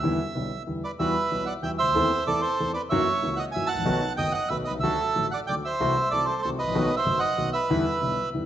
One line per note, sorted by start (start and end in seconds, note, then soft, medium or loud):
0.00 0.16 E2 medium
0.00 0.16 D3 medium
0.00 0.16 E3 medium
0.00 0.16 G3 medium
0.00 0.63 E5 medium
0.04 0.17 B3 medium
0.04 0.17 E4 medium
0.35 0.48 B1 soft
0.35 0.48 B2 soft
0.35 0.48 D3 soft
0.35 0.48 G3 soft
0.35 0.48 B3 soft
0.35 0.48 E4 soft
0.67 0.80 E2 soft
0.67 0.80 D3 soft
0.67 0.80 E3 soft
0.67 0.80 G3 soft
0.67 0.80 B3 soft
0.67 0.81 E4 soft
0.84 0.92 B4 soft
0.84 0.91 D5 medium
0.99 1.13 E2 medium
0.99 1.13 E3 medium
0.99 1.13 G3 medium
0.99 1.13 B3 medium
0.99 1.13 F#4 medium
0.99 1.45 B4 medium
0.99 1.49 E5 medium
1.31 1.45 B1 soft
1.31 1.45 B2 soft
1.31 1.45 E3 soft
1.31 1.45 G3 soft
1.31 1.45 B3 soft
1.31 1.45 F#4 soft
1.46 1.54 D5 medium
1.46 1.53 F#5 medium
1.63 1.76 E2 medium
1.63 1.76 E3 medium
1.63 1.76 G3 soft
1.63 1.76 B3 soft
1.63 1.77 F#4 soft
1.63 1.72 E5 medium
1.63 1.70 G5 medium
1.78 2.24 C5 medium
1.78 2.28 E5 medium
1.82 1.87 C#2 soft
1.87 1.91 D2 soft
1.91 1.95 D#2 medium
1.95 2.09 E2 medium
1.95 2.09 E3 medium
1.95 2.09 A3 medium
1.95 2.09 C4 medium
1.95 2.09 A4 medium
2.27 2.41 E2 soft
2.27 2.41 E3 soft
2.27 2.41 A3 soft
2.27 2.41 C4 soft
2.27 2.41 A4 medium
2.27 2.41 A4 soft
2.27 2.42 D5 medium
2.41 2.72 A4 medium
2.41 2.72 C5 medium
2.60 2.73 E2 soft
2.60 2.73 E3 soft
2.60 2.73 A3 soft
2.60 2.73 C4 soft
2.60 2.73 A4 soft
2.74 2.82 B4 medium
2.74 2.81 D5 medium
2.90 3.04 F#2 medium
2.90 3.04 E3 medium
2.90 3.04 F#3 medium
2.90 3.04 A#3 medium
2.90 3.04 C#4 medium
2.90 3.05 F#4 medium
2.90 3.34 C#5 medium
2.90 3.39 E5 medium
3.22 3.36 C#2 soft
3.22 3.36 C#3 soft
3.22 3.35 E3 soft
3.22 3.35 A#3 soft
3.22 3.35 C#4 soft
3.22 3.36 F#4 soft
3.37 3.46 D#5 medium
3.37 3.44 F#5 medium
3.52 3.68 E3 soft
3.52 3.68 E5 medium
3.52 3.67 G#5 medium
3.56 3.68 F#2 soft
3.56 3.68 F#3 medium
3.56 3.68 A#3 soft
3.56 3.68 C#4 soft
3.56 3.68 F#4 soft
3.67 4.13 F#5 medium
3.67 4.12 A5 medium
3.75 3.78 G#1 soft
3.75 3.81 A1 medium
3.82 3.85 A#1 medium
3.82 3.99 B1 medium
3.82 3.99 B2 medium
3.82 3.98 D#3 medium
3.82 3.98 A3 medium
3.82 3.99 B3 medium
3.86 3.99 F#4 medium
4.17 4.31 F#1 soft
4.17 4.31 F#2 soft
4.17 4.31 D#3 soft
4.17 4.31 A3 soft
4.17 4.31 B3 soft
4.17 4.31 F#4 soft
4.17 4.33 D#5 medium
4.17 4.32 G5 medium
4.32 4.49 D#5 medium
4.32 4.49 F#5 medium
4.49 4.64 B1 soft
4.49 4.63 B2 soft
4.49 4.63 D#3 soft
4.49 4.63 A3 soft
4.49 4.64 B3 soft
4.49 4.64 F#4 soft
4.49 4.58 B4 medium
4.49 4.56 E5 medium
4.65 4.74 B4 medium
4.65 4.72 D#5 medium
4.71 4.74 B1 soft
4.71 4.78 C2 soft
4.79 4.82 C#2 medium
4.79 5.26 E5 medium
4.83 4.96 D2 medium
4.83 4.96 D3 medium
4.83 4.96 F#3 medium
4.83 4.96 A3 medium
4.83 4.96 F#4 medium
4.83 5.28 A4 medium
5.15 5.28 A1 soft
5.15 5.28 A2 soft
5.15 5.28 D3 soft
5.15 5.29 F#3 soft
5.15 5.28 A3 soft
5.15 5.28 F#4 soft
5.31 5.40 D5 medium
5.31 5.38 F#5 medium
5.47 5.61 D2 soft
5.47 5.61 D3 soft
5.47 5.61 F#3 soft
5.47 5.61 A3 soft
5.47 5.62 F#4 soft
5.47 5.55 D5 medium
5.47 5.54 G5 medium
5.65 6.09 C5 medium
5.65 6.13 E5 medium
5.80 5.93 C2 medium
5.80 5.93 C3 medium
5.80 5.93 E3 medium
5.80 5.93 A3 medium
5.80 5.93 C4 medium
5.80 5.93 F#4 medium
6.11 6.25 C2 soft
6.11 6.25 C3 soft
6.11 6.25 E3 soft
6.11 6.25 A3 soft
6.11 6.25 C4 soft
6.11 6.25 F#4 soft
6.11 6.26 A4 medium
6.11 6.25 D5 medium
6.25 6.42 A4 medium
6.25 6.40 C5 medium
6.42 6.57 C2 soft
6.42 6.57 C3 medium
6.42 6.57 E3 soft
6.42 6.57 A3 soft
6.42 6.57 C4 soft
6.42 6.57 F#4 soft
6.42 6.50 A4 medium
6.42 6.49 C5 medium
6.59 6.95 B4 medium
6.59 6.95 D#5 medium
6.63 6.66 G#1 soft
6.68 6.71 A1 soft
6.68 6.74 A#1 medium
6.74 6.88 B1 medium
6.74 6.88 B2 medium
6.74 6.87 D#3 medium
6.74 6.88 A3 medium
6.74 6.88 B3 medium
6.74 6.88 F#4 medium
6.96 7.20 C5 medium
6.96 7.19 E5 medium
7.06 7.19 F#1 soft
7.06 7.19 F#2 soft
7.06 7.19 D#3 soft
7.06 7.19 A3 soft
7.06 7.19 B3 soft
7.06 7.19 F#4 soft
7.19 7.50 D#5 medium
7.19 7.50 F#5 medium
7.38 7.51 B1 soft
7.38 7.51 B2 soft
7.38 7.51 D#3 soft
7.38 7.51 A3 soft
7.38 7.51 B3 soft
7.38 7.51 F#4 soft
7.53 8.30 B4 medium
7.53 8.29 E5 medium
7.70 7.83 E2 medium
7.70 7.83 D3 medium
7.70 7.83 E3 medium
7.70 7.83 G3 medium
7.70 7.83 B3 medium
7.70 7.83 E4 medium
8.01 8.14 B1 soft
8.01 8.15 B2 soft
8.01 8.14 D3 soft
8.01 8.14 G3 soft
8.01 8.15 B3 soft
8.01 8.15 E4 soft
8.34 8.46 E2 soft
8.34 8.46 D3 soft
8.34 8.46 E3 soft
8.34 8.46 G3 soft
8.34 8.46 B3 soft
8.34 8.46 E4 soft